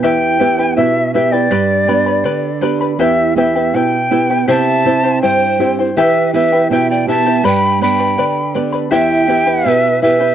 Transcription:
<<
  \new Staff \with { instrumentName = "Quena" } { \time 2/4 \key e \minor \tempo 4 = 81 g''4 e''8 e''16 d''16~ | d''4. r8 | e''8 e''8 g''4 | a''4 g''8. r16 |
e''8 e''8 g''16 g''16 a''8 | b''8 b''4 r8 | g''4 e''8 e''8 | }
  \new Staff \with { instrumentName = "Pan flute" } { \time 2/4 \key e \minor r2 | r2 | r2 | e''4 c''8. r16 |
b'8 b'8 e''16 d''16 e''8 | g''8 g''4 r8 | e''4 b'8 b'8 | }
  \new Staff \with { instrumentName = "Charango" } { \time 2/4 \key e \minor <e' g' b' e'' g''>8 <e' b' e'' g''>16 <e' b' g''>16 <e' b' e'' g''>8 <e' b' e'' g''>16 <e' b' g''>16 | <g' b' d'' g'' b''>8 <b' d'' g'' b''>16 <b' d'' b''>16 <b' d'' g'' b''>8 <b' d'' g'' b''>16 <b' d'' b''>16 | <e' g' b' e'' g''>8 <e' b' e'' g''>16 <e' b' g''>16 <e' b' e'' g''>8 <e' b' e'' g''>16 <e' b' g''>16 | <e' g' c'' e'' g''>8 <e' c'' e'' g''>16 <e' c'' g''>16 <e' c'' e'' g''>8 <e' c'' e'' g''>16 <e' c'' g''>16 |
<e' g' b' e'' g''>8 <e' b' e'' g''>16 <e' b' g''>16 <e' b' e'' g''>8 <e' b' e'' g''>16 <e' b' g''>16 | <g' b' d'' g'' b''>8 <b' d'' g'' b''>16 <b' d'' b''>16 <b' d'' g'' b''>8 <b' d'' g'' b''>16 <b' d'' b''>16 | <e' g' b' e'' g''>8 <e' b' e'' g''>16 <e' b' g''>16 <e' b' e'' g''>8 <e' b' e'' g''>16 <e' b' g''>16 | }
  \new Staff \with { instrumentName = "Nylon-string guitar" } { \time 2/4 \key e \minor e,8 <b e' g'>8 b,8 <b e' g'>8 | g,8 <b d' g'>8 d8 <b d' g'>8 | e,8 <b e' g'>8 b,8 <b e' g'>8 | c8 <c' e' g'>8 g,8 <c' e' g'>8 |
e8 <b e' g'>8 b,8 <b e' g'>8 | g,8 <b d' g'>8 d8 <b d' g'>8 | e,8 <b e' g'>8 b,8 <b e' g'>8 | }
>>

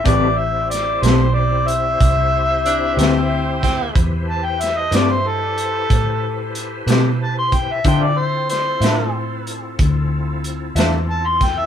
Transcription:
<<
  \new Staff \with { instrumentName = "Harmonica" } { \time 12/8 \key a \minor \tempo 4. = 62 d''8 e''8 d''8 c''8 d''8 e''2. r8 | r8 a''16 g''16 e''16 dis''16 d''16 c''16 a'2 r4 a''16 c'''16 g''16 e''16 | g''16 d''16 c''8 c''4 r2. a''16 c'''16 g''16 e''16 | }
  \new Staff \with { instrumentName = "Clean electric guitar" } { \time 12/8 \key a \minor <a c' g' b'>8 r4 <a c' g' b'>8 r2 r8 <a c' g' b'>8 r4 | r4. <a c' g' b'>8 r2 r8 <a c' g' b'>8 r4 | <d' f' c'' e''>8 r4 <d' f' c'' e''>8 r2 r8 <d' f' c'' e''>8 r4 | }
  \new Staff \with { instrumentName = "Tonewheel organ" } { \time 12/8 \key a \minor <c' e' g' c''>1. | <e' g' b' c''>1. | <c' e' f' a'>1. | }
  \new Staff \with { instrumentName = "Tenor saxophone" } { \time 12/8 \key a \minor r1 d'8 c'4 c'8 | r1. | r1. | }
  \new Staff \with { instrumentName = "Fingered electric bass" } { \clef bass \time 12/8 \key a \minor a,,4. b,,4. c,4. d,4. | e,4. g,4. a,4. b,4. | d4. a,4. d,4. e,4. | }
  \new DrumStaff \with { instrumentName = "Drums" } \drummode { \time 12/8 <hh bd>4 <hh sn>8 <hh sn>4 hh8 <hh bd>4 hh8 <hh sn>4 <hh bd sn>8 | <hh bd>4 <hh sn>8 <hh sn>4 hh8 <hh bd>4 hh8 <hh sn>4 <hh bd>8 | <hh bd>4 <hh sn>8 <hh sn>4 hh8 <hh bd>4 hh8 <hh sn>4 <hh bd sn>8 | }
>>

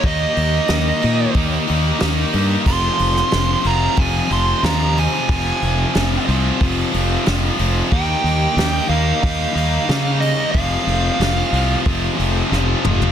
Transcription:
<<
  \new Staff \with { instrumentName = "Lead electric guitar" } { \time 4/4 \key f \minor \tempo 4 = 91 ees''2 r2 | c'''4. bes''8 aes''8 c'''8 bes''8 aes''8~ | aes''4. r2 r8 | g''4. f''8 f''4. ees''8 |
f''2 r2 | }
  \new Staff \with { instrumentName = "Distorted electric guitar" } { \time 4/4 \key f \minor <ees g bes ees' g'>4 <ees g bes ees' g'>8 <ees g bes ees' g'>8 <ees g bes ees' g'>4 <ees g bes ees' g'>8 <ees g bes ees' g'>8 | <f c' f' aes'>4 <f c' f' aes'>8 <f c' f' aes'>8 <f c' f' aes'>4 <f c' f' aes'>8 <f c' f' aes'>8 | <f c' f' aes'>4 <f c' f' aes'>8 <f c' f' aes'>8 <f c' f' aes'>4 <f c' f' aes'>8 <f c' f' aes'>8 | <ees g bes ees' g'>4 <ees g bes ees' g'>8 <ees g bes ees' g'>8 <ees g bes ees' g'>4 <ees g bes ees' g'>8 <ees g bes ees' g'>8 |
<f c' f' aes'>4 <f c' f' aes'>8 <f c' f' aes'>8 <f c' f' aes'>4 <f c' f' aes'>8 <f c' f' aes'>8 | }
  \new Staff \with { instrumentName = "Distorted electric guitar" } { \clef bass \time 4/4 \key f \minor <ees bes ees'>2~ <ees bes ees'>8 <ees bes ees'>8 <ees bes ees'>4 | <f, c f>2~ <f, c f>8 <f, c f>8 <f, c f>4 | <f, c f>2~ <f, c f>8 <f, c f>8 <f, c f>4 | <ees bes ees'>2~ <ees bes ees'>8 <ees bes ees'>8 <ees bes ees'>4 |
<f, c f>2~ <f, c f>8 <f, c f>8 <f, c f>4 | }
  \new Staff \with { instrumentName = "Distorted electric guitar" } { \clef bass \time 4/4 \key f \minor <ees bes ees'>4. <ees bes ees'>4. <ees bes ees'>4 | <f, c f>4. <f, c f>4. <f, c f>4 | <f, c f>4. <f, c f>4. <f, c>4 | <ees bes ees'>4. <ees bes ees'>4. <ees bes ees'>4 |
<f, c f>4. <f, c f>4. <f, c f>4 | }
  \new Staff \with { instrumentName = "Fingered electric bass" } { \clef bass \time 4/4 \key f \minor ees,8 ees,8 ees,8 bes,8 ees,8 ees,8 ees,8 g,8 | f,,8 f,,8 f,,8 f,,8 f,,8 f,,8 ees,4 | f,,8 f,,8 f,,8 c,8 f,,8 f,,8 f,,8 f,,8 | ees,8 ees,8 ees,8 ees,8 ees,8 ees,8 des4 |
f,,8 f,,8 f,,8 c,8 f,,8 f,,8 f,,8 f,,8 | }
  \new DrumStaff \with { instrumentName = "Drums" } \drummode { \time 4/4 <hho bd>8 hho8 <hho sn>8 hho8 <hho bd>8 hho8 <hho sn>8 hho8 | <cymc bd>8 hho16 sn16 <hho sn>8 hho8 <hho bd>8 hho8 <hho sn>8 hho8 | <hho bd>8 hho8 <hho sn>8 hho8 <hho bd>8 hho8 <hho sn>8 hho8 | <hho bd>8 hho8 <hho sn>8 hho8 <hho bd>8 hho8 <hho sn>8 hho8 |
<hho bd>8 hho8 <hho sn>8 hho8 <hho bd>8 hho8 sn8 toml16 tomfh16 | }
>>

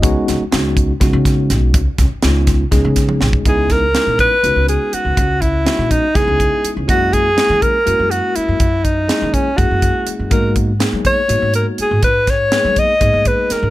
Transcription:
<<
  \new Staff \with { instrumentName = "Alto saxophone" } { \time 7/8 \key cis \dorian \tempo 4 = 122 r2. r8 | r2. r8 | gis'8 ais'4 b'4 gis'8 fis'8~ | fis'8 e'4 dis'8 gis'4 r8 |
fis'8 gis'4 ais'4 fis'8 e'8~ | e'8 dis'4 cis'8 fis'4 r8 | ais'8 r4 cis''4 ais'8 gis'8 | b'8 cis''4 dis''4 b'8 ais'8 | }
  \new Staff \with { instrumentName = "Tine electric piano" } { \time 7/8 \key cis \dorian <gis b cis' dis' fis'>4 <gis b cis' dis' fis'>4 <gis b cis' dis' fis'>4. | r4 <gis b cis' dis' eis'>4 <gis b cis' dis' gis'>4. | <gis b cis' dis' e'>4 <gis b cis' dis' e'>4 <gis b cis' dis' fis'>4. | r4 <gis b cis' dis' fis'>4 <gis b cis' dis' e'>4. |
<gis ais cis' e' fis'>4 <gis ais cis' e' gis'>4 <gis ais cis' e' fis'>4. | r4 <gis ais cis' e' gis'>4 <gis ais cis' e' gis'>4. | <gis ais b dis' fis'>4 <gis ais b dis' gis'>4 <gis ais b dis' fis'>4. | r4 <gis ais b dis' gis'>4 <gis ais b dis' gis'>4. | }
  \new Staff \with { instrumentName = "Upright bass" } { \clef bass \time 7/8 \key cis \dorian cis,16 r16 cis,16 r16 cis,4 cis,16 cis8. b,,8 | cis,16 r16 cis,16 r16 cis,4 cis,16 cis8. b,,8 | cis,4~ cis,16 ais,8 r16 cis,16 cis,8 r8 cis,16 | cis,4~ cis,16 ais,8 r16 cis,16 cis,8 r8 cis,16 |
fis,4~ fis,16 dis8 r16 fis,16 fis,8 r8 fis,16 | fis,4~ fis,16 dis8 r16 fis,16 fis,8 r8 fis,16 | gis,4~ gis,16 fis8 r16 gis,16 gis,8 r8 gis,16 | gis,4~ gis,16 fis8 r16 gis,16 gis,8 r8 gis,16 | }
  \new DrumStaff \with { instrumentName = "Drums" } \drummode { \time 7/8 <hh bd>8 <hh sn>8 <hh sn>8 <hh bd>8 <hh bd sn>8 <hh bd sn>8 <hh sn>8 | <hh bd>8 <hh bd sn>8 <hh sn>8 <hh bd sn>8 <hh bd sn>8 <hh bd sn>16 tommh16 sn16 bd16 | <hh bd>8 <hh bd sn>8 <hh sn>8 <hh bd>8 hh8 hh8 hh8 | <hh bd>8 <hh bd>8 <hh sn>8 <hh bd>8 <hh bd sn>8 <hh bd>8 hh8 |
<hh bd>8 <hh bd>8 <hh sn>8 <hh bd>8 hh8 hh8 hh8 | <hh bd>8 <hh bd>8 <hh sn>8 <hh bd>8 <hh bd>8 <hh bd>8 hh8 | <hh bd>8 <hh bd>8 <hh sn>8 <hh bd>8 hh8 hh8 hh8 | <hh bd>8 <hh bd sn>8 <hh sn>8 <hh bd>8 <hh bd>8 <hh bd>8 <hh sn>8 | }
>>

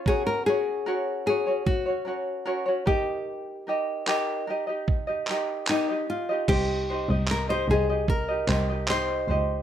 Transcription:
<<
  \new Staff \with { instrumentName = "Nylon-string guitar" } { \time 4/4 \key c \phrygian \tempo 4 = 75 aes'16 bes'16 aes'4 aes'8 ges'4. g'8~ | g'2. ees'8 f'8 | g'4 bes'16 c''16 aes'8 bes'4 c''4 | }
  \new Staff \with { instrumentName = "Ukulele" } { \time 4/4 \key c \phrygian <des' ges' bes' des''>8 <des' ges' bes' des''>8 <des' ges' bes' des''>8 <des' ges' bes' des''>16 <des' ges' des''>8 <des' ges' des''>16 <des' ges' bes' des''>8 <des' ges' bes' des''>16 <des' ges' des''>16 <ees' g' bes' ees''>8~ | <ees' g' bes' ees''>8 <ees' g' bes' ees''>8 <ees' g' bes' ees''>8 <ees' g' bes' ees''>16 <ees' g' ees''>8 <ees' g' ees''>16 <ees' g' bes' ees''>8 <ees' g' bes' ees''>16 <ees' g' ees''>8 <ees' g' ees''>16 | <ees' g' c'' ees''>8 <ees' g' c'' ees''>16 <ees' g' ees''>8 <ees' g' c'' ees''>16 <ees' g' c'' ees''>16 <ees' g' ees''>8 <ees' g' ees''>16 <ees' g' c'' ees''>16 <ees' g' ees''>16 <ees' g' c'' ees''>8 <ees' g' c'' ees''>8 | }
  \new Staff \with { instrumentName = "Double bass" } { \clef bass \time 4/4 \key c \phrygian r1 | r1 | c,8. c,8. c,4 c,4 des,8 | }
  \new DrumStaff \with { instrumentName = "Drums" } \drummode { \time 4/4 bd4 r4 bd4 r8 bd8 | r4 hc4 bd8 hc8 hc4 | <cymc bd>4 hc4 bd8 hc8 hc4 | }
>>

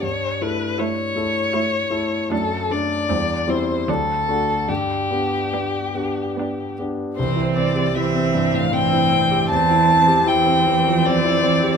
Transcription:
<<
  \new Staff \with { instrumentName = "Violin" } { \time 3/4 \key g \major \tempo 4 = 77 cis''8 b'8 cis''2 | a'8 d''4 c''8 a'4 | g'2~ g'8 r8 | \key c \major c''8 d''8 e''8. f''16 g''4 |
a''4 g''4 d''4 | }
  \new Staff \with { instrumentName = "Viola" } { \time 3/4 \key g \major r4 e'4 e'4 | d'4 c'4 d'4 | r4 d'4 d'4 | \key c \major c'4 c'4 c'4 |
c'4 c'2 | }
  \new Staff \with { instrumentName = "Grand piano" } { \time 3/4 \key g \major g,8 <a e' a'>4 <a e' a'>4 <a e' a'>8 | fis,8 <a d' a'>8 e,8 <g c' e'>8 d,8 <a d' fis'>8 | g,8 <b d' g'>4 <b d' g'>4 <b d' g'>8 | \key c \major c,16 e'16 c'16 g'16 e'16 c'16 g,16 a,16 c'16 e'16 c'16 g'16 |
e,16 e'16 c'16 g'16 e'16 c'16 e16 f16 c'16 e'16 c'16 g'16 | }
  \new Staff \with { instrumentName = "Cello" } { \clef bass \time 3/4 \key g \major r4 a4 a4 | a4 g4 fis4 | r4 b4 b4 | \key c \major e4 e4 e4 |
e4 e2 | }
>>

